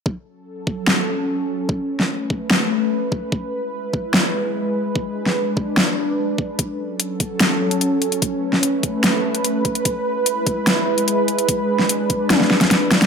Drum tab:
HH |----------------|----------------|----------------|----------------|
SD |--------o-------|---o----o-------|--------o-------|---o----o-------|
T1 |----------------|----------------|----------------|----------------|
BD |o-----o---------|o-----o-------o-|o-----o---------|o-----o-------o-|

HH |x---x-x-x--xx-xx|x---x-x-x--xx-xx|x---x-x-x--xx-xx|x---x-x-x--xx-xx|
SD |--------o-------|---o----o-------|--------o-------|---o----ooooo-oo|
T1 |----------------|----------------|----------------|--------o-------|
BD |o-----o---------|o-----o-------o-|o-----o---------|o-----o----o----|